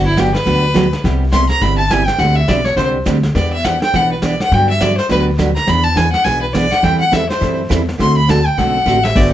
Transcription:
Already playing: upright bass G1
0.06 fiddle E4
0.17 steel-string acoustic guitar D3 F#3 B3 D4 G4, fiddle G4, kick, snare, hi-hat pedal
0.35 fiddle B4, snare
0.45 upright bass D2, steel-string acoustic guitar D3 F#3 B3 D4 G4, brush sweep, kick, snare
0.74 steel-string acoustic guitar D3 F#3 B3 D4 G4, kick, snare, hi-hat pedal
0.93 snare
1.04 upright bass C2, steel-string acoustic guitar C3 G3 B3 E4 G4, brush sweep, kick, snare
1.32 steel-string acoustic guitar C3 G3 B3 E4 G4, fiddle C6, kick, snare, hi-hat pedal
1.49 fiddle A#5, snare
1.61 upright bass G1, steel-string acoustic guitar C3 G3 B3 E4 G4, fiddle B5, brush sweep, kick, snare
1.78 fiddle A5
1.90 steel-string acoustic guitar C3 G3 B3 E4 G4, fiddle G#5, kick, snare, hi-hat pedal
2.06 fiddle G5, snare
2.18 upright bass D2, steel-string acoustic guitar D3 G3 C4 D4 G4, fiddle F#5, brush sweep, kick, snare
2.36 fiddle E5
2.48 upright bass B1, steel-string acoustic guitar D3 G3 C4 D4 G4, fiddle D5, kick, snare, hi-hat pedal
2.65 fiddle C#5, snare
2.76 upright bass C2, steel-string acoustic guitar D3 G3 C4 D4 G4, fiddle C5, brush sweep, kick, snare
3.05 upright bass D2, steel-string acoustic guitar D3 G3 C4 D4 G4, kick, snare, hi-hat pedal
3.23 snare
3.35 upright bass E2, steel-string acoustic guitar E3 B3 D4 G4, fiddle D5, brush sweep, kick, snare
3.53 fiddle E5
3.65 steel-string acoustic guitar E3 B3 D4 G4, fiddle F#5, kick, snare, hi-hat pedal
3.82 fiddle G5, snare
3.93 upright bass B1, steel-string acoustic guitar E3 B3 D4 G4, fiddle F#5, brush sweep, kick, snare
4.12 fiddle B4
4.22 steel-string acoustic guitar E3 B3 D4 G4, fiddle D5, kick, snare, hi-hat pedal
4.40 fiddle F#5, snare
4.52 upright bass G2, steel-string acoustic guitar D3 F#3 B3 D4 G4, fiddle G5, brush sweep, kick, snare
4.70 fiddle E5
4.80 steel-string acoustic guitar D3 F#3 B3 D4 G4, fiddle D5, kick, snare, hi-hat pedal
4.97 fiddle C5, snare
5.09 upright bass D2, steel-string acoustic guitar D3 F#3 B3 D4 G4, fiddle B4, brush sweep, kick, snare
5.38 steel-string acoustic guitar D3 F#3 B3 D4 G4, kick, snare, hi-hat pedal
5.55 fiddle A#5, snare
5.67 upright bass E2, steel-string acoustic guitar E3 B3 D4 G#4, fiddle B5, brush sweep, kick, snare
5.84 fiddle A5
5.95 steel-string acoustic guitar E3 B3 D4 G#4, fiddle G#5, kick, snare, hi-hat pedal
6.12 fiddle F#5, snare
6.24 upright bass B1, steel-string acoustic guitar E3 B3 D4 G#4, fiddle G#5, brush sweep, kick, snare
6.42 fiddle B4
6.53 steel-string acoustic guitar E3 B3 D4 G#4, fiddle D5, kick, snare, hi-hat pedal
6.71 fiddle F#5, snare
6.82 upright bass E2, steel-string acoustic guitar E3 G3 C4 E4 A4, fiddle G5, brush sweep, kick, snare
7.00 fiddle F#5
7.11 steel-string acoustic guitar E3 G3 C4 E4 A4, fiddle E5, kick, snare, hi-hat pedal
7.29 fiddle C5, snare
7.40 upright bass F#2, steel-string acoustic guitar E3 G3 C4 E4 A4, brush sweep, kick, snare
7.69 upright bass E2, steel-string acoustic guitar E3 G3 C4 E4 A4, kick, snare, hi-hat pedal
7.88 snare
7.98 upright bass D2, steel-string acoustic guitar D3 A3 C4 F#4 A4, fiddle C6, brush sweep, kick, snare
8.17 fiddle B5
8.28 steel-string acoustic guitar D3 A3 C4 F#4 A4, fiddle A5, kick, snare, hi-hat pedal
8.46 fiddle G5
8.57 upright bass B1, steel-string acoustic guitar D3 A3 C4 F#4 A4, fiddle F#5, brush sweep, kick, snare
8.86 upright bass A1, steel-string acoustic guitar D3 A3 C4 F#4 A4, hi-hat pedal
9.03 fiddle E5, snare
9.15 upright bass G1, steel-string acoustic guitar D3 F#3 B3 D4 G4, fiddle D5, brush sweep, kick, snare, crash

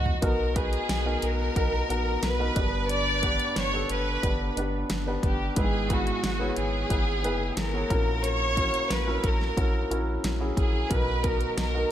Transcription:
Already playing: analog synth bass C#2, upright piano E3 B3 D#4, violin section F#4
0.06 floor tom
0.22 analog synth bass B1, upright piano B3 D#4 F#4 A#4, violin section A#4, kick, closed hi-hat
0.55 upright piano B3 D#4 F#4 B4, violin section G#4, kick, closed hi-hat
0.73 closed hi-hat
0.89 analog synth bass B1, snare, closed hi-hat
1.05 upright piano B3 D#4 F#4 A#4
1.22 analog synth bass B1, violin section A#4, closed hi-hat
1.56 analog synth bass B1, upright piano B3 D#4 F#4 A#4, kick, closed hi-hat
1.89 analog synth bass A#1, upright piano B3 D#4 F#4 A#4, closed hi-hat
2.23 analog synth bass B1, violin section B4, snare, closed hi-hat
2.39 upright piano B3 D#4 F#4 A#4
2.56 analog synth bass G1, upright piano G2 D3 B3 D4 G4 B4, kick, closed hi-hat
2.89 violin section D5, closed hi-hat
3.22 upright piano B3 D4 G4 B4, kick, closed hi-hat
3.40 closed hi-hat
3.56 analog synth bass G1, violin section C#5, snare, closed hi-hat
3.73 upright piano B3 D4 G4 A4
3.89 analog synth bass G1, violin section B4, closed hi-hat
4.23 analog synth bass G1, upright piano B3 D4 G4 B4, kick, closed hi-hat
4.57 analog synth bass G1, upright piano B3 D4 G4 B4, closed hi-hat
4.90 analog synth bass G1, snare, closed hi-hat
5.06 upright piano B3 D4 G4 B4
5.23 analog synth bass G1, violin section G4, kick, closed hi-hat
5.56 analog synth bass G#1, upright piano G#2 G#3 B3 E4 G#4 B4, violin section G#4, kick, closed hi-hat
5.90 upright piano B3 E4 G#4 B4, violin section F#4, kick, closed hi-hat
6.07 closed hi-hat
6.24 analog synth bass G#1, snare, closed hi-hat
6.40 upright piano B3 E4 G#4 C#5
6.56 analog synth bass G#1, violin section G#4, closed hi-hat
6.90 analog synth bass G#1, upright piano B3 E4 G#4 B4, kick, closed hi-hat
7.23 analog synth bass F#1, upright piano B3 E4 G#4 B4, closed hi-hat
7.57 analog synth bass G#1, violin section A#4, snare, closed hi-hat
7.73 upright piano B3 E4 G#4 C#5
7.90 analog synth bass A#1, upright piano A#2 A#3 C#4 E4 F#4 A#4, kick, closed hi-hat
8.24 violin section C#5, closed hi-hat
8.56 upright piano C#4 E4 F#4 A#4, kick, closed hi-hat
8.74 closed hi-hat
8.90 analog synth bass A#1, violin section B4, snare, closed hi-hat
9.06 upright piano C#4 E4 F#4 A#4
9.24 analog synth bass A#1, violin section A#4, kick, closed hi-hat
9.41 snare
9.56 analog synth bass A#1, upright piano C#4 E4 F#4 A#4, kick, closed hi-hat
9.90 analog synth bass A#1, upright piano C#4 E4 F#4 A#4, closed hi-hat
10.24 analog synth bass A#1, snare, closed hi-hat
10.40 upright piano C#4 E4 F#4 G#4
10.57 analog synth bass A#1, violin section G#4, kick, closed hi-hat
10.90 analog synth bass B1, upright piano B2 F#3 B3 D#4 F#4 A#4, violin section B4, kick, closed hi-hat
11.23 upright piano B3 D#4 F#4 A#4, violin section A#4, kick, closed hi-hat
11.41 closed hi-hat
11.57 analog synth bass B1, violin section A#4, snare, closed hi-hat
11.74 upright piano B3 D#4 F#4 A#4

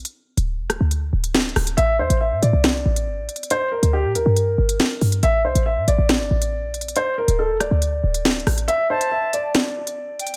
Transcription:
0.05 closed hi-hat
0.37 808-style bass D1, closed hi-hat
0.59 808-style bass F1
0.70 808-style bass D1, cross-stick, closed hi-hat
0.81 808-style bass D2
0.91 closed hi-hat
1.13 808-style bass D1
1.24 closed hi-hat
1.34 snare, closed hi-hat
1.42 closed hi-hat
1.49 closed hi-hat
1.56 808-style bass D1, cross-stick, open hi-hat
1.67 closed hi-hat
1.77 808-style bass A1, grand piano E5, closed hi-hat
1.99 808-style bass E2, grand piano C5
2.10 808-style bass A1, closed hi-hat
2.21 grand piano E5
2.32 808-style bass A2
2.42 808-style bass A2, grand piano D5, closed hi-hat
2.53 808-style bass C2
2.64 snare, closed hi-hat
2.86 808-style bass A1
2.96 closed hi-hat
3.07 808-style bass G1
3.18 808-style bass A1
3.29 closed hi-hat
3.36 closed hi-hat
3.43 closed hi-hat
3.50 grand piano C5, closed hi-hat
3.71 grand piano A#4
3.83 808-style bass D2, closed hi-hat
3.93 grand piano G4
4.04 808-style bass A#2
4.15 808-style bass D2, grand piano A#4, closed hi-hat
4.26 808-style bass G2
4.37 closed hi-hat
4.58 808-style bass G1
4.69 closed hi-hat
4.80 snare, closed hi-hat
5.01 808-style bass G2, open hi-hat
5.12 closed hi-hat
5.23 808-style bass A1, grand piano E5, closed hi-hat
5.44 808-style bass C2, grand piano C5
5.55 808-style bass A1, closed hi-hat
5.66 grand piano E5
5.77 808-style bass A2
5.88 808-style bass A1, grand piano D5, closed hi-hat
5.98 808-style bass A1
6.09 snare, closed hi-hat
6.20 808-style bass G1
6.31 808-style bass A1
6.42 closed hi-hat
6.63 808-style bass A#1
6.74 closed hi-hat
6.81 closed hi-hat
6.88 closed hi-hat
6.96 grand piano C5, closed hi-hat
7.18 grand piano A#4
7.28 808-style bass D1, closed hi-hat
7.39 grand piano A4
7.50 808-style bass F1
7.60 808-style bass D1, grand piano D5, cross-stick, closed hi-hat
7.71 808-style bass D2
7.82 closed hi-hat
8.04 808-style bass D1
8.14 closed hi-hat
8.25 snare, closed hi-hat
8.32 closed hi-hat
8.40 closed hi-hat
8.47 808-style bass A1, cross-stick, open hi-hat
8.58 closed hi-hat
8.68 grand piano E5, closed hi-hat
8.90 grand piano C5, flute A5
9.01 closed hi-hat
9.11 grand piano E5
9.33 grand piano D5, closed hi-hat
9.55 snare, closed hi-hat
9.87 closed hi-hat
10.19 flute G5, closed hi-hat
10.27 closed hi-hat

